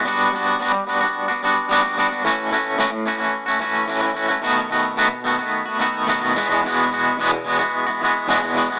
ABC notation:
X:1
M:4/4
L:1/16
Q:1/4=109
K:E
V:1 name="Clean electric guitar"
[=G,B,=DF]2 [G,B,DF]2 [G,B,DF]2 [G,B,DF] [B,DF]2 [B,DF] [G,B,DF]2 [G,B,DF] [B,DF] [G,B,DF] [B,F] | [A,,E,A,CF]2 [E,A,CF]2 [A,,E,A,CF]2 [E,A,CF] [A,CF]2 [A,CF] [E,A,CF]2 [A,,E,A,CF] [A,CF] [E,A,CF] [A,CF] | [B,,D,A,B,F]2 [D,A,B,F]2 [B,,D,A,B,F]2 [D,A,B,F] [A,B,F]2 [A,B,F] [D,A,B,F]2 [B,,D,A,B,F] [A,B,F] [E,,B,,E,G,B,F] [E,G,B,F] | [E,,B,,E,G,B,F]2 [E,G,B,F]2 [E,,B,,E,G,B,F]2 [E,G,B,F] [E,G,B,F]2 [E,G,B,F] [E,G,B,F]2 [E,,B,,E,G,B,F] [E,G,B,F] [E,G,B,F] [E,G,B,F] |]